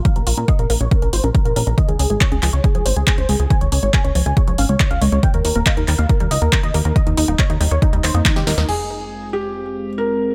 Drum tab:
CC |----------------|----------------|----------------|----------------|
HH |xxo-xxoxxxoxxxox|xxoxxxo-xxoxxxox|xxoxxxoxxxoxxxox|xxoxxxoxxxoxxxox|
CP |----------------|----x-x-----x---|----x-------x---|----x-x-----x---|
SD |----------------|----------------|----------------|----------------|
BD |o---o---o---o---|o---o---o---o---|o---o---o---o---|o---o---o---o---|

CC |----------------|x---------------|
HH |xxoxxxoxxxoxxxox|----------------|
CP |----x-----x-x---|----------------|
SD |------------oooo|----------------|
BD |o---o---o---o---|----------------|